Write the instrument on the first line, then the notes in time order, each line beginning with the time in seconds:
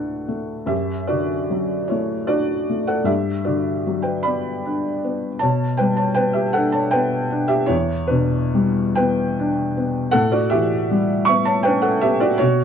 felt piano
Already playing: D2 A2 F#3 A3 D4 A4 B4 F#5
0.28 A3
0.66 F#2 G4 E5
1.07 F#4 D5
1.12 D3
1.50 F#3
1.88 A3 E4 C#5
2.27 D4 F#4 D5
2.70 A3
2.87 A4 F#5
3.04 G2 G4 E5
3.45 D3 F#4 D5
3.87 F#3
4.02 B4 G5
4.23 B3 D5 B5
4.66 D4
5.04 B3
5.39 B2 C#5 A5
5.77 G3 B4 G5
5.97 C#5 A5
6.15 B3 B4 G5
6.33 G4 E5
6.53 D4 A4 F#5
6.72 C#5 A5
6.91 B3 B4 G5
7.31 D4
7.48 G4 E5
7.66 E2 E4 C#5
8.07 B2 D4 B4
8.55 G3
8.95 B3 B4 G5
9.39 D4
9.77 B3
10.11 A2 A4 F#5
10.32 F#4 D5
10.50 E3 G4 E5
10.91 G3
11.25 B3 E5 C#6
11.45 C#5 A5
11.63 B4 G5
11.67 C#4
11.82 A4 F#5
12.01 B3 G4 E5
12.20 F#4 D5
12.38 B2 F#4 C#5